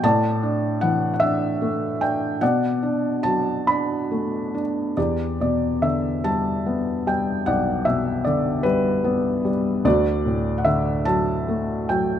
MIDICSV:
0, 0, Header, 1, 2, 480
1, 0, Start_track
1, 0, Key_signature, 2, "minor"
1, 0, Tempo, 793651
1, 20, Time_signature, 6, 3, 24, 8
1, 1460, Tempo, 851064
1, 2902, Key_signature, 1, "minor"
1, 3860, Tempo, 796813
1, 5780, Tempo, 821918
1, 7145, End_track
2, 0, Start_track
2, 0, Title_t, "Felt piano"
2, 0, Program_c, 0, 0
2, 0, Control_c, 0, 64, 127
2, 21, Note_on_c, 0, 45, 59
2, 22, Note_on_c, 0, 81, 91
2, 27, Control_c, 0, 64, 0
2, 29, Note_on_c, 0, 74, 64
2, 122, Control_c, 0, 64, 127
2, 260, Note_on_c, 0, 62, 50
2, 471, Note_off_c, 0, 81, 0
2, 491, Note_on_c, 0, 78, 83
2, 500, Note_on_c, 0, 52, 45
2, 678, Note_off_c, 0, 78, 0
2, 687, Note_on_c, 0, 78, 62
2, 713, Note_off_c, 0, 74, 0
2, 724, Note_on_c, 0, 76, 77
2, 730, Note_off_c, 0, 78, 0
2, 733, Note_off_c, 0, 62, 0
2, 742, Note_on_c, 0, 62, 50
2, 977, Note_on_c, 0, 57, 49
2, 1205, Note_off_c, 0, 62, 0
2, 1214, Note_on_c, 0, 62, 45
2, 1216, Note_on_c, 0, 79, 74
2, 1225, Note_off_c, 0, 76, 0
2, 1435, Note_off_c, 0, 45, 0
2, 1438, Note_off_c, 0, 52, 0
2, 1447, Note_off_c, 0, 57, 0
2, 1452, Note_off_c, 0, 62, 0
2, 1459, Note_on_c, 0, 78, 77
2, 1461, Note_on_c, 0, 47, 52
2, 1466, Control_c, 0, 64, 0
2, 1467, Note_off_c, 0, 79, 0
2, 1468, Note_on_c, 0, 74, 60
2, 1570, Control_c, 0, 64, 127
2, 1693, Note_on_c, 0, 62, 44
2, 1906, Note_off_c, 0, 78, 0
2, 1921, Note_on_c, 0, 81, 77
2, 1931, Note_on_c, 0, 54, 41
2, 2153, Note_off_c, 0, 74, 0
2, 2164, Note_off_c, 0, 62, 0
2, 2170, Note_on_c, 0, 83, 68
2, 2172, Note_on_c, 0, 62, 45
2, 2175, Note_off_c, 0, 81, 0
2, 2419, Note_on_c, 0, 57, 41
2, 2654, Note_off_c, 0, 62, 0
2, 2662, Note_on_c, 0, 62, 39
2, 2697, Note_off_c, 0, 83, 0
2, 2880, Note_off_c, 0, 47, 0
2, 2881, Note_off_c, 0, 54, 0
2, 2889, Note_off_c, 0, 57, 0
2, 2896, Note_off_c, 0, 62, 0
2, 2901, Note_on_c, 0, 40, 42
2, 2902, Note_on_c, 0, 74, 56
2, 2907, Note_on_c, 0, 67, 41
2, 2909, Control_c, 0, 64, 0
2, 3001, Control_c, 0, 64, 127
2, 3126, Note_off_c, 0, 74, 0
2, 3146, Note_on_c, 0, 47, 35
2, 3152, Note_on_c, 0, 74, 52
2, 3381, Note_on_c, 0, 50, 36
2, 3382, Note_on_c, 0, 76, 63
2, 3395, Note_off_c, 0, 74, 0
2, 3602, Note_off_c, 0, 67, 0
2, 3618, Note_on_c, 0, 55, 39
2, 3620, Note_on_c, 0, 81, 71
2, 3629, Note_off_c, 0, 76, 0
2, 3857, Note_on_c, 0, 59, 40
2, 4081, Note_off_c, 0, 47, 0
2, 4090, Note_off_c, 0, 55, 0
2, 4099, Note_on_c, 0, 55, 37
2, 4103, Note_on_c, 0, 79, 65
2, 4117, Note_off_c, 0, 81, 0
2, 4319, Note_off_c, 0, 50, 0
2, 4320, Note_off_c, 0, 40, 0
2, 4337, Note_on_c, 0, 78, 74
2, 4344, Note_on_c, 0, 35, 47
2, 4345, Note_on_c, 0, 74, 49
2, 4351, Note_off_c, 0, 79, 0
2, 4562, Note_off_c, 0, 78, 0
2, 4572, Note_on_c, 0, 76, 69
2, 4580, Note_on_c, 0, 47, 41
2, 4795, Note_off_c, 0, 59, 0
2, 4798, Note_off_c, 0, 76, 0
2, 4800, Note_off_c, 0, 74, 0
2, 4809, Note_on_c, 0, 74, 69
2, 4819, Note_on_c, 0, 50, 43
2, 5030, Note_off_c, 0, 55, 0
2, 5042, Note_on_c, 0, 71, 71
2, 5055, Note_on_c, 0, 55, 45
2, 5059, Note_off_c, 0, 74, 0
2, 5290, Note_on_c, 0, 59, 50
2, 5510, Note_off_c, 0, 47, 0
2, 5524, Note_off_c, 0, 55, 0
2, 5533, Note_on_c, 0, 55, 47
2, 5564, Note_off_c, 0, 71, 0
2, 5753, Note_off_c, 0, 50, 0
2, 5754, Note_off_c, 0, 35, 0
2, 5761, Note_off_c, 0, 59, 0
2, 5769, Note_off_c, 0, 55, 0
2, 5773, Note_on_c, 0, 38, 56
2, 5777, Note_on_c, 0, 74, 80
2, 5785, Control_c, 0, 64, 0
2, 5787, Note_on_c, 0, 66, 55
2, 5880, Control_c, 0, 64, 127
2, 6013, Note_on_c, 0, 45, 45
2, 6202, Note_on_c, 0, 78, 55
2, 6226, Note_off_c, 0, 74, 0
2, 6241, Note_on_c, 0, 76, 78
2, 6246, Note_on_c, 0, 50, 49
2, 6247, Note_off_c, 0, 78, 0
2, 6468, Note_off_c, 0, 76, 0
2, 6473, Note_off_c, 0, 66, 0
2, 6479, Note_on_c, 0, 81, 81
2, 6487, Note_on_c, 0, 54, 51
2, 6730, Note_on_c, 0, 57, 47
2, 6945, Note_off_c, 0, 81, 0
2, 6950, Note_off_c, 0, 45, 0
2, 6963, Note_off_c, 0, 54, 0
2, 6968, Note_on_c, 0, 79, 68
2, 6972, Note_on_c, 0, 54, 46
2, 7145, Note_off_c, 0, 38, 0
2, 7145, Note_off_c, 0, 50, 0
2, 7145, Note_off_c, 0, 54, 0
2, 7145, Note_off_c, 0, 57, 0
2, 7145, Note_off_c, 0, 79, 0
2, 7145, End_track
0, 0, End_of_file